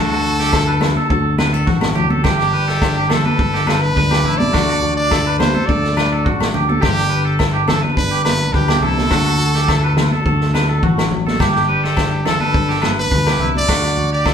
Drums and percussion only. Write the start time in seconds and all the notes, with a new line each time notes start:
0.11 snare
0.40 snare
0.53 kick, snare, low agogo
0.81 snare, high conga, low conga, low agogo
0.96 high conga
1.10 kick
1.38 snare, high conga, low agogo
1.67 kick, snare
1.81 snare, high conga, low agogo
1.96 low conga
2.10 high conga
2.24 kick, snare, low conga, low agogo
2.40 snare
2.68 snare
2.82 kick, snare, low agogo
3.10 snare, high conga, low conga, low agogo
3.26 high conga
3.39 kick
3.54 snare
3.67 snare, high conga, low agogo
3.97 kick, snare
4.11 snare, high conga, low agogo
4.25 low conga
4.40 high conga
4.53 kick, snare, low conga, low agogo
4.82 low conga
5.11 kick, snare, low agogo
5.40 snare, high conga, low conga, low agogo
5.54 high conga
5.69 kick
5.84 snare
5.97 snare, low agogo
6.26 kick
6.40 snare, high conga, low agogo
6.54 low conga
6.70 high conga
6.82 kick, snare, low conga, low agogo
6.99 snare
7.39 kick, snare, low agogo
7.68 snare, high conga, low conga, low agogo
7.84 high conga
7.97 kick, snare
8.25 snare, high conga, low agogo
8.54 kick, snare
8.68 snare, high conga, low agogo
8.83 low conga
8.98 snare, high conga
9.11 kick, snare, low conga, low agogo
9.55 snare
9.68 kick, snare, low agogo
9.97 snare, high conga, low conga, low agogo
10.12 high conga
10.26 kick
10.41 snare
10.54 snare, high conga, low agogo
10.83 kick
10.97 snare, high conga, low agogo
11.11 low conga
11.26 snare, high conga
11.39 kick, snare, low conga, low agogo
11.55 snare
11.84 snare
11.97 kick, snare, low agogo
12.26 snare, low conga, low agogo
12.40 high conga
12.54 kick
12.70 snare
12.82 snare, high conga, low agogo
13.12 kick, snare
13.27 snare, high conga, low agogo
13.40 low conga
13.56 high conga
13.68 kick, snare, low agogo
13.84 snare
13.98 low conga
14.26 kick, snare, low agogo